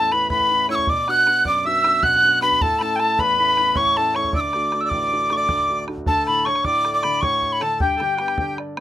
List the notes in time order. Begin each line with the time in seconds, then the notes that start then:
Already playing: E2 A2 A3 C#4 E4 A4 A5
0.12 A3 C#4 E4 B4 B5, bodhran
0.29 A2 B4 B5, bodhran
0.40 bodhran
0.50 A3 C#4 E4
0.69 A3 C#4 E4 C#5 E6, bodhran
0.75 C#6, bodhran
0.87 B2 D5 D6, bodhran
1.07 B3 D4 F#4 F#5 F#6, bodhran
1.27 B3 D4 F#4, bodhran
1.45 F#2 D5 D6, bodhran
1.58 D6
1.65 B3 D4 F#4 E5 E6
1.84 B3 D4 F#4, bodhran
2.03 B2 F#5 F#6, bodhran
2.13 F#5, bodhran
2.23 B3 D4 F#4
2.30 F#5
2.42 B3 D4 F#4 B4 B5, bodhran
2.52 bodhran
2.61 A2 A4 A5, bodhran
2.79 A3 C#4 E4 A5 B5, bodhran
2.96 G5 A5, bodhran
3.00 A3 E4
3.19 E2 B4 B5, bodhran
3.39 A3 C#4 E4
3.57 A3 C#4 E4, bodhran
3.75 A2 C#5 C#6, bodhran
3.86 bodhran
3.96 A3 C#4 E4 A4 A5
4.14 A3 C#4 E4 C#5 C#6, bodhran
4.24 bodhran
4.33 D2 D5 E6, bodhran
4.40 D6
4.53 A3 D4 F#4, bodhran
4.72 A3 D4 F#4, bodhran
4.81 E6
4.85 D5 E6
4.89 A1 D6, bodhran
5.13 A3 D4 F#4
5.30 A3 D4 F#4 C#6, bodhran
5.37 D5 D6
5.49 D2, bodhran
5.59 bodhran
5.69 A3 D4 F#4
5.88 A3 D4 F#4, bodhran
5.98 bodhran
6.06 D2 A4 A5, bodhran
6.27 A2 B5, bodhran
6.45 D3 C#5 C#6, bodhran
6.55 bodhran
6.65 A2 D5 D6, bodhran
6.85 A4, bodhran
6.94 D5 D6
7.03 D3 B5, bodhran
7.21 A2 C#5 C#6, bodhran
7.42 A4, bodhran
7.52 B5
7.61 D3 A4 A5, bodhran
7.80 G2 G4 G5, bodhran
7.97 A4, bodhran
8.01 D3 G4
8.16 B3 F#4 G4, bodhran
8.28 bodhran
8.38 D3 G4, bodhran
8.58 D5, bodhran
8.77 B3, bodhran